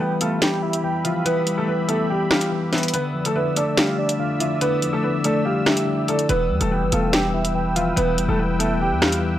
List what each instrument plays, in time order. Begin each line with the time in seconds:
Already playing: tine electric piano G3, analog synth pad G4 E5 B5
0.00 tine electric piano E3, upright piano B3 B4, soft synth lead G5
0.20 upright piano A3 A4, tine electric piano B3, soft synth lead F5, closed hi-hat
0.42 upright piano G3 G4, soft synth lead G5, snare, closed hi-hat
0.63 tine electric piano E4, soft synth lead E5
0.73 closed hi-hat
0.84 tine electric piano E3, soft synth lead G5
1.04 upright piano F3 F4, tine electric piano E5, soft synth lead F5, closed hi-hat
1.25 tine electric piano E3, upright piano B3 B4, closed hi-hat
1.47 tine electric piano G3, closed hi-hat
1.58 upright piano A3 A4
1.68 tine electric piano E3, upright piano B3 B4
1.88 upright piano A3 A4, tine electric piano B3, soft synth lead E5, closed hi-hat
2.10 upright piano G3 G4, soft synth lead G5
2.30 upright piano G3 G4, tine electric piano E4, soft synth lead F5, cross-stick, snare
2.41 closed hi-hat
2.52 tine electric piano E3
2.73 upright piano B3 B4, tine electric piano E5, snare, closed hi-hat
2.78 closed hi-hat
2.83 closed hi-hat
2.88 closed hi-hat
2.94 tine electric piano D3, upright piano B3 B4, analog synth pad D5 E5 E6, closed hi-hat
3.14 tine electric piano F3
3.25 upright piano A3 A4, closed hi-hat
3.35 tine electric piano D3, upright piano B3 B4, soft synth lead E5
3.56 tine electric piano A3, upright piano A3 A4, soft synth lead D5, closed hi-hat
3.77 upright piano G3 G4, soft synth lead F5, snare, closed hi-hat
3.99 tine electric piano D4, soft synth lead D5
4.09 closed hi-hat
4.19 tine electric piano D3, soft synth lead F5
4.40 upright piano F3 F4, tine electric piano E4, soft synth lead E5, closed hi-hat
4.61 tine electric piano D3, upright piano B3 B4, closed hi-hat
4.82 tine electric piano F3, closed hi-hat
4.93 upright piano A3 A4
5.03 tine electric piano D3, upright piano B3 B4
5.24 tine electric piano A3, upright piano A3 A4, soft synth lead D5, closed hi-hat
5.45 upright piano G3 G4, soft synth lead F5
5.66 upright piano G3 G4, tine electric piano D4, soft synth lead E5, cross-stick, snare
5.77 closed hi-hat
5.87 tine electric piano D3
6.08 upright piano A3 A4, tine electric piano E4, soft synth lead D5, closed hi-hat
6.19 closed hi-hat
6.29 808-style bass E1, tine electric piano E3, upright piano B3 B4, analog synth pad B4 G5, closed hi-hat
6.50 808-style bass E2, tine electric piano G3
6.61 808-style bass E1, upright piano A3 A4, closed hi-hat
6.71 tine electric piano E3, upright piano B3 B4, soft synth lead G5
6.82 808-style bass G1
6.92 808-style bass E1, upright piano A3 A4, tine electric piano B3, soft synth lead F5, closed hi-hat
7.13 upright piano G3 G4, soft synth lead G5, snare, closed hi-hat
7.34 tine electric piano E4, soft synth lead E5
7.45 closed hi-hat
7.55 tine electric piano E3, soft synth lead G5
7.75 upright piano F3 F4, tine electric piano E5, soft synth lead F5, closed hi-hat
7.96 808-style bass E1, tine electric piano E3, upright piano B3 B4, closed hi-hat
8.18 808-style bass F1, tine electric piano G3, closed hi-hat
8.28 808-style bass E1, upright piano A3 A4
8.39 tine electric piano E3, upright piano B3 B4
8.59 upright piano A3 A4, tine electric piano B3, soft synth lead E5, closed hi-hat
8.81 upright piano G3 G4, soft synth lead G5
8.91 808-style bass E2
9.02 upright piano G3 G4, tine electric piano E4, soft synth lead F5, cross-stick, snare
9.12 closed hi-hat
9.23 tine electric piano E3